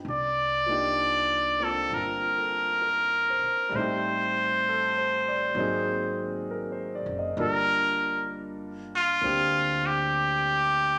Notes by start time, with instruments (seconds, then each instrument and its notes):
0.05 upright bass C2
0.10 muted trumpet D5
0.66 grand piano F3 A#3 D4 D#4
0.71 grand piano G4
1.59 grand piano A#3 C4 D4 F4
1.64 muted trumpet A4
1.90 upright bass G1
1.94 muted trumpet A#4
2.38 grand piano A4
2.82 grand piano A#4
3.30 grand piano C5
3.42 muted upright bass stroke
3.69 upright bass A1, grand piano G3 A3
3.75 grand piano C4 D#4, muted trumpet C5
3.80 grand piano G4
4.68 grand piano A4
4.97 grand piano C5
5.28 grand piano D5
5.55 upright bass G#1, grand piano F#3 A#3 C4
5.59 grand piano D#4 G#4
6.51 grand piano A#4
6.72 grand piano C5
6.95 grand piano D5
7.06 upright bass F#1
7.18 grand piano D#5
7.37 upright bass G1, grand piano G3 A#3 D4 F4 A#4, muted trumpet A#4
8.95 muted trumpet F4
9.21 upright bass D2, grand piano A#3 C4 D4
9.25 grand piano G4
9.86 muted trumpet G4